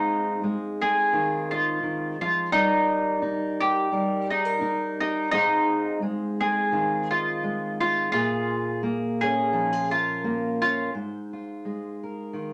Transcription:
Already playing: G#2 G#3 C4 D#4 F4 C5
0.44 G#3
0.82 C4 G#4
1.13 D#3 F4
1.51 F4 D#5
1.83 D#3
2.21 F3 F4
2.52 G3 D#4 G4 A#4
3.22 D#4
3.60 G4
3.92 G3 A#4
4.30 D#4 G#4
4.45 A#4
4.61 D#4
5.00 D#4 G4
5.31 G#2 G#3 C4 D#4 F4 C5
6.02 G#3
6.41 C4 G#4
6.72 D#3 F4
7.11 F4 D#5
7.43 G#3
7.81 C4 F4
8.12 A#2 F4 G#4
8.83 A#3
9.21 C#4 G#4
9.53 F3 D#4
9.73 F4
9.91 F4 A#4
10.24 A#3
10.62 C#4 F4
10.94 G#2 C5
11.33 F4
11.65 G#3
12.03 A#4
12.33 D#3 F4

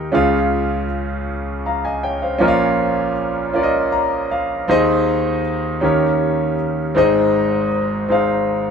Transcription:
Already playing: D#4 G4 A#4 D#5 G5
0.12 C#2 C#3 C#4 F4 G#4 C#5 F5
1.66 F5 A#5
1.85 D#5 G#5
2.03 C#5 G5
2.22 C5 F5
2.38 A#1 A#2 C#4 F4 A#4 C#5 D#5
2.48 F5
3.53 C#4 F4 A#4 C#5 D5
3.63 D#5
3.92 A#5
4.31 F5
4.68 D#2 D#3 C4 D#4 G#4 C5 D#5
5.81 D#2 D#3 C#4 D#4 G4 A#4 C#5
6.95 G#1 G#2 C4 D#4 G#4 C5 D#5
8.09 C4 D#4 G#4 C5 F5

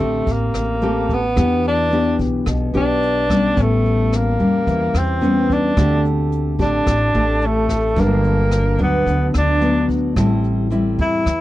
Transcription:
Already playing: D3 A3
0.00 A1 C4 G4
0.27 A1, kick, closed hi-hat
0.32 A#3
0.54 A1, cross-stick, closed hi-hat
0.81 A3 C4 G4, closed hi-hat
1.09 B3, kick, closed hi-hat
1.36 E2 E3 B3 D4 G4, kick, cross-stick, closed hi-hat
1.64 D4, closed hi-hat
1.91 B3 D4 G4, closed hi-hat
2.19 B1, kick, closed hi-hat
2.46 B1 B2, kick, cross-stick, closed hi-hat
2.74 B1 B3 D4 G4, closed hi-hat
3.03 closed hi-hat
3.30 G3 B3 C#4, kick, cross-stick, closed hi-hat
3.57 A1 A2, kick, closed hi-hat
3.61 A3
3.85 closed hi-hat
4.13 A#3, cross-stick, closed hi-hat
4.39 E2 G3 C#4, closed hi-hat
4.67 E2 E3, kick, closed hi-hat
4.94 E2 C4, cross-stick, closed hi-hat
5.21 G3 B3 C#4, closed hi-hat
5.50 D4, kick, closed hi-hat
5.77 D2 D3 A3 C4 G4, kick, cross-stick, closed hi-hat
6.05 closed hi-hat
6.32 closed hi-hat
6.59 A1 A3 C4 D4 G4, kick, closed hi-hat
6.87 A1 A2, kick, cross-stick, closed hi-hat
7.14 A1 A3 C4 G4, closed hi-hat
7.42 closed hi-hat
7.46 A3
7.69 kick, cross-stick, closed hi-hat
7.96 G1 G2 F#3 D4, kick, closed hi-hat
8.00 A#3
8.24 closed hi-hat
8.51 cross-stick, closed hi-hat
8.78 D2 F#3 B3 D4, closed hi-hat
8.82 B3
9.06 D2 D3, kick, closed hi-hat
9.34 D2 D4, cross-stick, closed hi-hat
9.61 F#3 B3 D4, closed hi-hat
9.89 kick, closed hi-hat
10.16 A1 A2 G3 C4 E4, kick, cross-stick, closed hi-hat
10.44 closed hi-hat
10.70 G3 C4 E4, closed hi-hat
10.99 E2 E4, kick, closed hi-hat
11.26 E2 E3, kick, cross-stick, closed hi-hat

